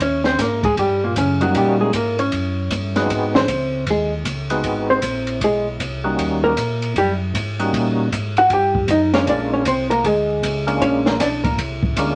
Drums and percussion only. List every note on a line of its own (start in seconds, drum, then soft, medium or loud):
0.00 kick soft
0.00 ride medium
0.24 snare soft
0.38 kick soft
0.38 snare soft
0.38 hi-hat pedal medium
0.38 ride medium
0.63 kick medium
0.63 ride soft
0.77 kick soft
0.77 ride medium
1.16 kick soft
1.16 hi-hat pedal medium
1.16 ride medium
1.41 ride soft
1.55 kick soft
1.55 ride medium
1.93 kick soft
1.93 hi-hat pedal medium
1.93 ride medium
2.19 ride soft
2.32 kick soft
2.32 ride medium
2.71 kick soft
2.71 hi-hat pedal medium
2.71 ride medium
2.96 snare soft
2.96 ride soft
3.10 kick soft
3.10 ride medium
3.35 snare medium
3.48 kick soft
3.48 hi-hat pedal medium
3.48 ride medium
3.87 kick soft
3.87 ride medium
4.25 kick soft
4.25 hi-hat pedal medium
4.25 ride medium
4.50 ride soft
4.64 kick soft
4.64 ride medium
5.02 kick soft
5.02 hi-hat pedal medium
5.02 ride medium
5.27 ride soft
5.41 kick soft
5.41 ride medium
5.79 kick soft
5.79 hi-hat pedal soft
5.79 ride medium
6.18 kick soft
6.18 ride medium
6.57 kick soft
6.57 hi-hat pedal medium
6.57 ride medium
6.82 ride soft
6.95 kick soft
6.95 ride medium
7.34 kick soft
7.34 hi-hat pedal medium
7.34 ride medium
7.60 ride soft
7.73 kick soft
7.73 ride medium
8.12 kick soft
8.12 hi-hat pedal medium
8.12 ride medium
8.37 ride soft
8.50 kick soft
8.50 ride medium
8.75 kick medium
8.88 kick soft
8.88 hi-hat pedal medium
8.88 ride medium
9.14 snare soft
9.14 ride soft
9.27 kick soft
9.27 ride medium
9.65 kick soft
9.65 hi-hat pedal medium
9.65 ride medium
9.91 ride soft
10.04 kick soft
10.04 ride medium
10.43 kick soft
10.43 hi-hat pedal medium
10.43 ride medium
10.68 ride soft
10.81 kick soft
10.81 ride medium
11.06 snare medium
11.20 kick soft
11.20 snare soft
11.20 hi-hat pedal soft
11.20 ride medium
11.44 kick medium
11.44 ride soft
11.58 kick soft
11.58 ride medium
11.83 kick medium
11.96 kick soft
11.96 hi-hat pedal medium
11.96 ride medium